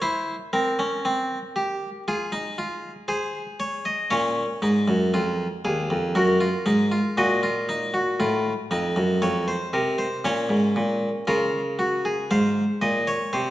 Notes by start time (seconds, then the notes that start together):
0.02 E4 C5
0.53 C4 A#4
0.79 C#4
1.05 C4
1.56 G4
2.08 F4 G#4
2.32 D#4
2.58 F4
3.08 G#4 C5
3.60 C#5
3.85 D#5
4.10 A#2 C#4 C#5
4.62 G#2 D#4
4.88 F#2
5.14 F2 F4
5.65 D#2 G#4
5.90 F2
6.15 F#2 F#4 A#4
6.40 F4
6.66 G#2 D#4
6.92 F4
7.17 A#2 F#4 D#5
7.43 F4
7.69 D#4
7.94 F#4
8.20 A2 F4
8.71 F2 D#4
8.96 F#2
9.22 F2 C#5
9.48 C5
9.73 C3 A#4
9.98 C5
10.25 A#2 C#4 C#5
10.49 G#2
10.76 A#2
11.27 C#3 F4 A#4
11.79 F#4
12.05 G#4
12.31 G#2 C5 F5
12.82 A#2 D#5
13.07 C#5
13.33 C3 C5